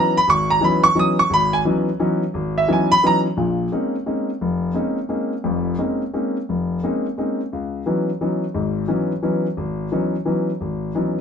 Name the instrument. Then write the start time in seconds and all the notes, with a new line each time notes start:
grand piano
Already playing: E3 F#3 B3 C#4 D#4
0.00 A#5
0.17 B5
0.28 G#1 C#6
0.50 A#5
0.61 E3 F#3 B3 C#4 D#4 B5
0.84 C#6
0.95 E3 F#3 B3 C#4 D#4
0.99 D#6
1.19 C#6
1.30 G#1 B5
1.53 G#5
1.65 E3 F#3 B3 C#4 D#4
1.99 E3 F#3 B3 C#4 D#4
2.34 G#1
2.58 E5
2.68 E3 F#3 B3 C#4 D#4
2.73 G#5
2.92 B5
3.03 E3 F#3 B3 C#4 D#4 A#5
3.37 A#1 A#2
3.72 G#3 A#3 C4 C#4 D#4
4.06 G#3 A#3 C4 C#4 D#4
4.41 F1
4.74 G#3 A#3 C4 C#4 D#4
5.09 G#3 A#3 C4 C#4 D#4
5.44 F1 F2
5.78 G#3 A#3 C4 C#4 D#4
6.13 G#3 A#3 C4 C#4 D#4
6.49 F1
6.83 G#3 A#3 C4 C#4 D#4
7.18 G#3 A#3 C4 C#4 D#4
7.53 C#2
7.86 E3 F#3 B3 C#4 D#4
8.21 E3 F#3 B3 C#4 D#4
8.54 G#1 G#2
8.88 E3 F#3 B3 C#4 D#4
9.23 E3 F#3 B3 C#4 D#4
9.57 G#1
9.92 E3 F#3 B3 C#4 D#4
10.25 E3 F#3 B3 C#4 D#4
10.61 G#1
10.95 E3 F#3 B3 C#4 D#4